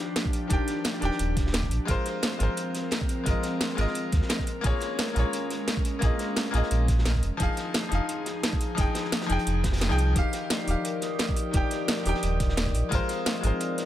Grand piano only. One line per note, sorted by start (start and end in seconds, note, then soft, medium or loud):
0.00 0.47 D#3 medium
0.00 0.49 D4 medium
0.00 0.51 G4 medium
0.00 1.90 F5 loud
0.47 0.98 D#3 medium
0.47 1.00 D4 medium
0.47 1.01 G4 medium
0.53 1.02 G5 medium
0.99 1.85 D#3 medium
0.99 1.86 D4 medium
0.99 1.87 G4 medium
1.05 1.88 G5 loud
1.85 2.36 G#3 medium
1.85 2.38 F4 medium
1.85 2.39 A#4 medium
1.91 2.40 C5 loud
2.37 3.22 G#3 medium
2.37 3.24 F4 medium
2.37 3.25 A#4 medium
2.43 3.26 C5 medium
3.24 3.74 G#3 medium
3.24 3.76 F4 medium
3.24 3.77 A#4 medium
3.29 3.78 D#5 medium
3.75 4.45 G#3 medium
3.75 4.46 F4 medium
3.75 4.47 A#4 medium
3.81 4.48 D#5 loud
4.61 5.12 A#3 loud
4.61 5.14 F4 medium
4.65 5.15 G#4 medium
4.65 5.15 C#5 loud
5.13 5.98 A#3 medium
5.13 6.00 F4 medium
5.13 6.01 G#4 medium
5.19 6.02 C#5 medium
5.99 6.49 A#3 medium
5.99 6.51 F4 medium
6.03 6.52 G#4 medium
6.03 6.53 D#5 medium
6.51 7.20 A#3 medium
6.51 7.21 F4 medium
6.51 7.22 G#4 medium
6.57 7.23 D#5 loud
7.37 7.87 F3 loud
7.37 7.89 D#4 medium
7.37 7.90 G#4 medium
7.43 7.91 F5 loud
7.89 8.73 F3 medium
7.89 8.75 D#4 medium
7.89 8.77 G#4 medium
7.95 8.78 F5 medium
8.75 9.25 F3 medium
8.75 9.27 D#4 medium
8.79 9.28 G#4 medium
8.79 9.29 G5 medium
9.26 9.87 F3 medium
9.26 9.88 D#4 medium
9.26 9.89 G#4 medium
9.32 9.90 G5 loud
9.89 10.13 F3 loud
9.89 10.14 D#4 medium
9.89 10.14 G#4 medium
9.89 10.15 G5 loud
10.13 10.63 D#3 medium
10.13 10.66 G4 medium
10.18 10.67 F5 loud
10.64 11.50 D#3 medium
10.69 11.52 G4 medium
10.69 11.53 F5 medium
11.51 12.01 D#3 medium
11.51 12.04 G4 medium
11.57 12.05 G5 medium
12.03 12.89 D#3 medium
12.03 12.90 G4 medium
12.09 12.92 G5 loud
12.89 13.39 G#3 medium
12.89 13.41 F4 medium
12.89 13.42 A#4 medium
12.95 13.43 C5 loud
13.41 13.85 G#3 medium
13.41 13.85 F4 medium
13.41 13.85 A#4 medium
13.47 13.85 C5 medium